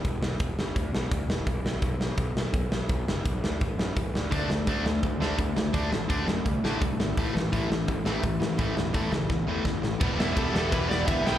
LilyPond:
<<
  \new Staff \with { instrumentName = "Lead electric guitar" } { \time 4/4 \key e \minor \tempo 4 = 169 r1 | r1 | r1 | r1 |
r1 | r1 | r1 | r4 a'4 b'8 d''8 e''8 g''8 | }
  \new Staff \with { instrumentName = "Distorted electric guitar" } { \clef bass \time 4/4 \key e \minor r1 | r1 | r1 | <d a d'>8 <d a>8 <d a d'>8 <d a>8 <d a>8 <d a d'>8 <d a>8 <d a>8 |
<d a d'>8 <d a>8 <d a d'>8 <d a>8 <d a>8 <d a d'>8 <d a>8 <d a>8 | <a, e a>8 <a, e>8 <a, e a>8 <a, e>8 <a, e>8 <a, e a>8 <a, e>8 <a, e>8 | <a, e a>8 <a, e>8 <a, e a>8 <a, e>8 <a, e>8 <a, e a>8 <a, e>8 <a, e>8 | <e g b e'>8 <e g b e'>8 <e g b e'>8 <e g b e'>8 <e g b e'>8 <e g b e'>8 <e g b e'>8 <e g b e'>8 | }
  \new Staff \with { instrumentName = "Picked electric bass" } { \clef bass \time 4/4 \key e \minor e,,8 b,,8 e,,8 g,,8 d,8 b,,8 d,8 e,,8 | b,,8 b,,8 b,,8 b,,8 b,,8 b,,8 b,,8 b,,8 | b,,8 fis,,8 b,,8 d,8 a,,8 fis,8 a,,8 d,8 | d,8 d,8 d,8 d,8 d,8 d,8 d,8 d,8 |
d,8 a,,8 d,8 fis,8 c,8 a,8 c,8 gis,,8 | a,,8 a,,8 a,,8 a,,8 a,,8 a,,8 a,,8 a,,8 | a,,8 e,,8 a,,8 cis,8 g,,8 e,8 g,,8 a,,8 | e,,8 e,,8 e,,8 e,,8 e,,4 g,,8 b,,8 | }
  \new DrumStaff \with { instrumentName = "Drums" } \drummode { \time 4/4 <hho bd>8 sn8 <hho bd>8 sn8 <hho bd>8 sn8 <hho bd>8 sn8 | <hho bd>8 sn8 <hho bd>8 sn8 <hho bd>8 sn8 <hho bd>8 sn8 | <hho bd>8 sn8 <hho bd>8 sn8 <hho bd>8 sn8 <hho bd>8 sn8 | <hho bd>8 sn8 <hho bd>8 sn8 <hho bd>8 sn8 <hho bd>8 sn8 |
<hho bd>8 sn8 <hho bd>8 sn8 <hho bd>8 sn8 <hho bd>8 sn8 | <hho bd>8 sn8 <hho bd>8 sn8 <hho bd>8 sn8 <hho bd>8 sn8 | <hho bd>8 sn8 <hho bd>8 sn8 <bd sn>4 <bd sn>8 sn8 | <cymc bd>8 sn8 <cymc bd>8 sn8 <cymc bd>8 sn8 <cymc bd>8 sn8 | }
>>